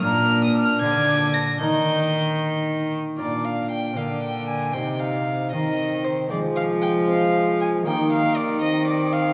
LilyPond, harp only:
<<
  \new Staff \with { instrumentName = "Harp" } { \time 6/8 \key bes \mixolydian \tempo 4. = 77 <bes d' bes'>2. | <bes ees' bes'>2. | <bes f' d''>2. | <c' c''>4. <c' c''>4. |
<aes c' c''>4. <aes c' c''>4. | <bes ees' g'>2. | }
  \new Staff \with { instrumentName = "Harp" } { \clef bass \time 6/8 \key bes \mixolydian bes,4. d4. | ees2. | bes,4. d4. | c4. ees4. |
f2. | ees2. | }
>>